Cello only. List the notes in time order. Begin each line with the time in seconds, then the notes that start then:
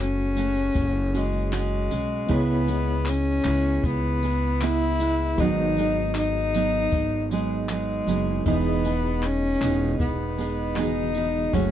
0.00 C#4
1.16 G#3
1.55 G#3
2.33 B3
3.09 C#4
3.86 B3
4.63 E4
5.40 D#4
6.16 D#4
7.32 G#3
7.70 G#3
8.48 B3
9.25 C#4
10.00 B3
10.77 D#4
11.53 C#4